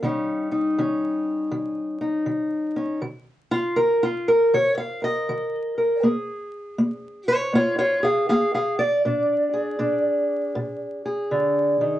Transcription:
0.00 0.72 D#3 medium
0.00 2.99 G3 medium
0.00 0.52 F5 medium
0.04 0.79 C#4 medium
0.04 0.51 D#4 medium
0.52 2.00 D#4 soft
0.78 1.48 D#3 medium
0.78 2.75 C#4 soft
1.52 2.22 D#3 medium
2.01 2.99 D#4 soft
2.26 2.97 D#3 medium
2.76 2.99 C#4 soft
3.01 3.72 D#3 medium
3.51 3.77 F4 loud
3.76 4.47 D#3 medium
3.76 4.02 A#4 medium
4.03 4.28 F4 medium
4.28 4.53 A#4 medium
4.53 5.23 D#3 medium
4.53 4.77 C#5 loud
4.77 5.03 F5 medium
5.02 5.77 A#4 soft
5.02 6.04 D#5 medium
5.29 5.98 D#3 medium
5.78 6.07 A#4 soft
6.03 6.73 A#3 medium
6.03 7.27 G#4 medium
6.78 7.48 A#3 medium
7.27 7.53 F4 medium
7.27 7.53 C#5 medium
7.53 8.23 A#3 medium
7.53 7.77 F4 medium
7.53 7.77 C#5 loud
7.78 8.02 F4 medium
7.78 8.04 C#5 medium
8.03 8.28 G#4 medium
8.03 8.28 F5 medium
8.29 9.00 A#3 medium
8.29 8.53 G#4 medium
8.29 8.54 F5 loud
8.54 8.79 G#4 medium
8.54 8.78 F5 medium
8.79 11.05 D5 loud
9.05 9.75 A#2 medium
9.05 9.78 D4 medium
9.53 11.04 G#4 soft
9.79 10.49 A#2 medium
9.79 11.99 D4 soft
10.55 11.25 A#2 medium
11.05 11.99 G#4 soft
11.31 11.80 D3 medium
11.81 11.99 D#3 medium

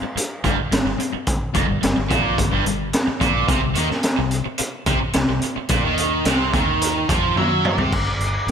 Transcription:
0.01 muted fingered electric bass stroke soft
0.01 muted overdriven electric guitar stroke medium
0.01 muted distorted electric guitar stroke medium
0.15 muted fingered electric bass stroke soft
0.15 muted distorted electric guitar stroke medium
0.15 muted overdriven electric guitar stroke medium
0.15 closed hi-hat loud
0.44 0.57 G1 loud
0.44 0.56 G2 loud
0.44 kick loud
0.44 closed hi-hat medium
0.58 muted distorted electric guitar stroke medium
0.58 muted overdriven electric guitar stroke soft
0.72 0.84 G1 medium
0.72 0.84 G2 medium
0.72 snare loud
0.72 closed hi-hat loud
0.85 0.98 G1 medium
0.85 0.97 G2 medium
0.98 muted distorted electric guitar stroke medium
0.98 muted overdriven electric guitar stroke medium
0.98 closed hi-hat medium
1.13 muted distorted electric guitar stroke medium
1.13 muted fingered electric bass stroke soft
1.13 muted overdriven electric guitar stroke medium
1.27 kick loud
1.27 closed hi-hat loud
1.54 1.68 F1 loud
1.54 1.67 F2 loud
1.54 kick loud
1.54 closed hi-hat medium
1.68 1.82 G1 medium
1.68 1.81 G2 medium
1.82 1.96 G1 medium
1.82 1.95 G2 medium
1.82 snare loud
1.82 closed hi-hat loud
1.96 2.10 G1 medium
1.96 2.10 G2 medium
2.09 2.36 A#1 loud
2.09 2.37 A#2 loud
2.09 kick loud
2.09 closed hi-hat medium
2.37 2.51 G1 medium
2.37 2.50 G2 medium
2.37 kick loud
2.37 closed hi-hat loud
2.51 2.65 G1 loud
2.51 2.64 G2 loud
2.66 2.91 G1 medium
2.66 2.88 G2 medium
2.66 closed hi-hat medium
2.93 snare loud
2.93 closed hi-hat medium
3.07 muted distorted electric guitar stroke medium
3.07 muted fingered electric bass stroke soft
3.07 muted overdriven electric guitar stroke medium
3.20 3.47 A#1 medium
3.20 3.47 A#2 loud
3.20 kick loud
3.20 closed hi-hat medium
3.48 3.61 C2 loud
3.48 3.62 C3 loud
3.48 kick loud
3.48 closed hi-hat medium
3.63 3.76 C2 medium
3.63 3.76 C3 medium
3.75 3.89 D#2 loud
3.75 3.89 D#3 medium
3.75 closed hi-hat medium
3.91 muted overdriven electric guitar stroke medium
3.91 muted distorted electric guitar stroke medium
3.91 muted fingered electric bass stroke soft
3.91 snare soft
4.03 snare medium
4.03 closed hi-hat medium
4.18 4.44 C2 medium
4.18 4.40 C3 medium
4.31 closed hi-hat medium
4.46 muted overdriven electric guitar stroke medium
4.46 muted distorted electric guitar stroke medium
4.58 muted overdriven electric guitar stroke medium
4.58 muted fingered electric bass stroke soft
4.58 muted distorted electric guitar stroke medium
4.58 closed hi-hat loud
4.86 5.00 C2 medium
4.86 5.00 C3 loud
4.86 kick loud
4.86 closed hi-hat medium
5.01 muted overdriven electric guitar stroke medium
5.01 muted distorted electric guitar stroke medium
5.01 muted fingered electric bass stroke soft
5.13 5.28 C2 medium
5.13 5.28 C3 medium
5.13 snare loud
5.13 closed hi-hat medium
5.29 5.42 C2 medium
5.29 5.41 C3 medium
5.42 muted distorted electric guitar stroke medium
5.42 muted overdriven electric guitar stroke medium
5.42 closed hi-hat medium
5.56 muted distorted electric guitar stroke medium
5.56 muted fingered electric bass stroke soft
5.56 muted overdriven electric guitar stroke medium
5.68 5.83 A#1 medium
5.68 5.83 A#2 loud
5.68 kick loud
5.68 closed hi-hat loud
5.84 6.23 D#2 medium
5.84 6.25 D#3 loud
5.97 closed hi-hat medium
6.25 6.51 C2 medium
6.25 6.53 C3 medium
6.25 snare loud
6.25 closed hi-hat loud
6.53 7.05 D#2 medium
6.53 7.08 D#3 loud
6.53 kick loud
6.53 closed hi-hat medium
6.81 closed hi-hat loud
7.09 7.35 F2 medium
7.09 7.36 F3 medium
7.09 kick loud
7.09 closed hi-hat medium
7.36 7.75 F#2 medium
7.36 7.78 F#3 loud
7.36 7.65 E5 loud
7.36 high tom medium
7.65 8.48 D5 medium
7.65 mid tom medium
7.77 7.91 C2 medium
7.77 7.92 C3 loud
7.77 floor tom medium
7.92 8.10 G1 medium
7.92 kick loud
7.92 crash medium
8.19 8.38 G1 medium
8.19 closed hi-hat medium
8.47 8.51 G1 medium

